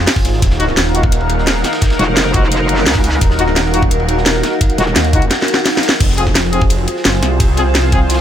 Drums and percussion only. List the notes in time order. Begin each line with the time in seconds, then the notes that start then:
0.07 snare, closed hi-hat, open hi-hat
0.16 kick, ride
0.25 snare, open hi-hat, ride
0.33 snare
0.42 kick, closed hi-hat, ride
0.50 snare
0.60 closed hi-hat, ride
0.68 snare
0.77 snare, closed hi-hat, ride
0.86 snare
0.95 open hi-hat, ride
1.03 kick
1.12 closed hi-hat, ride
1.21 ride
1.29 closed hi-hat, ride
1.38 snare
1.47 snare, closed hi-hat, ride
1.55 snare
1.64 snare, open hi-hat, ride
1.73 snare, ride
1.81 kick, snare, closed hi-hat, ride
1.90 snare, ride
1.99 snare, closed hi-hat, ride
2.17 snare, closed hi-hat, ride
2.33 kick, open hi-hat, ride
2.52 closed hi-hat, ride
2.60 ride
2.69 closed hi-hat, ride
2.78 snare
2.86 snare, closed hi-hat, open hi-hat
2.95 kick, ride
3.03 snare, open hi-hat, ride
3.13 snare
3.21 kick, closed hi-hat, ride
3.31 snare
3.39 closed hi-hat, ride
3.48 snare
3.56 snare, closed hi-hat, ride
3.65 snare
3.74 open hi-hat, ride
3.82 kick
3.91 closed hi-hat, ride
4.00 ride
4.09 closed hi-hat, ride
4.17 snare
4.26 snare, closed hi-hat, ride
4.35 snare
4.43 snare, open hi-hat, ride
4.61 kick, closed hi-hat, ride
4.70 closed hi-hat
4.78 snare, closed hi-hat, ride
4.87 snare
4.96 snare, closed hi-hat, ride
5.05 closed hi-hat
5.13 kick, open hi-hat, ride
5.22 closed hi-hat
5.31 snare, closed hi-hat, ride
5.39 snare
5.42 snare
5.48 closed hi-hat, ride
5.54 snare
5.66 snare, closed hi-hat, open hi-hat
5.75 snare, ride
5.83 snare, open hi-hat, ride
5.89 snare
5.91 snare, ride
6.00 kick, closed hi-hat, crash, ride
6.09 snare
6.17 closed hi-hat, ride
6.27 kick, snare
6.35 snare, closed hi-hat, ride
6.44 snare
6.52 closed hi-hat, ride
6.62 kick
6.70 closed hi-hat, ride
6.78 ride
6.88 closed hi-hat, ride
6.97 snare
7.05 snare, closed hi-hat, ride
7.13 snare
7.23 snare, open hi-hat, ride
7.40 kick, closed hi-hat, ride
7.57 snare, closed hi-hat, ride
7.75 snare, closed hi-hat, ride
7.92 kick, closed hi-hat, ride
8.09 snare, closed hi-hat, ride
8.14 snare, ride